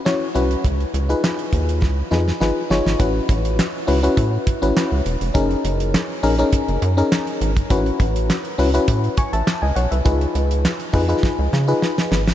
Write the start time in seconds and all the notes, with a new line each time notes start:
0.05 C#4 E4 F#4 C#5, snare, clap
0.34 C2 C#4 E4 F#4 B4, closed hi-hat
0.51 closed hi-hat
0.64 C#2, kick, closed hi-hat
0.80 closed hi-hat
0.94 C#2, closed hi-hat
1.09 D#4 F4 G#4 B4, closed hi-hat
1.24 snare, clap
1.39 closed hi-hat
1.53 D#2, kick, closed hi-hat
1.69 closed hi-hat
1.82 C#2, kick, snare
2.11 F2 D#4 F4 G#4 B4, snare
2.28 snare
2.40 G#1 D#4 F4 G#4 B4, snare
2.70 G1 D#4 F4 G#4 C#5, snare
2.86 G#1, snare
2.99 A1 C#4 E4 F#4 B4, kick, closed hi-hat
3.29 A1, kick, closed hi-hat
3.45 closed hi-hat
3.59 snare, clap
3.87 C#2 C#4 E4 F#4 B4, open hi-hat
4.03 C#4 E4 F#4 B4, closed hi-hat
4.17 A2, kick, closed hi-hat
4.47 kick, closed hi-hat
4.62 A1 C#4 E4 F#4 B4, closed hi-hat
4.77 snare, clap
4.92 C#2
5.06 E1, closed hi-hat
5.21 F1, closed hi-hat
5.34 F#1 C#4 D#4 G#4 A#4, kick, closed hi-hat
5.51 closed hi-hat
5.64 F#1, closed hi-hat
5.80 closed hi-hat
5.94 snare, clap
6.23 A#1 C#4 D#4 G#4 A#4, open hi-hat
6.39 C#4 D#4 G#4 A#4, closed hi-hat
6.53 kick, closed hi-hat
6.68 F#1, closed hi-hat
6.82 F#2, closed hi-hat
6.97 C#4 D#4 G#4 A#4, closed hi-hat
7.12 snare, clap
7.27 closed hi-hat
7.41 G#1, closed hi-hat
7.57 kick, closed hi-hat
7.70 A1 C#4 E4 F#4 B4, kick, closed hi-hat
7.86 closed hi-hat
8.00 A1, kick, closed hi-hat
8.16 closed hi-hat
8.30 snare, clap
8.45 closed hi-hat
8.58 C#2 C#4 E4 F#4 B4, open hi-hat
8.74 C#4 E4 F#4 B4, closed hi-hat
8.88 A2, kick, closed hi-hat
9.04 closed hi-hat
9.17 G#5 C#6, kick, closed hi-hat
9.33 A1 E5 A5, closed hi-hat
9.47 snare, clap
9.62 C#2 D#5 G#5
9.76 B1 C#5 F#5, closed hi-hat
9.91 C2 B4 E5, closed hi-hat
10.05 C#2 D#4 F4 G#4 B4, kick, closed hi-hat
10.21 closed hi-hat
10.35 C#2, closed hi-hat
10.51 closed hi-hat
10.65 snare, clap
10.80 closed hi-hat
10.93 F2 D#4 F4 G#4 B4, kick, open hi-hat
11.08 D#4 F4 G#4 B4, closed hi-hat
11.23 kick, snare
11.39 C#2
11.53 C#3, snare
11.67 D#4 F4 G#4 B4
11.82 snare
11.98 snare
12.12 G#1, snare
12.28 snare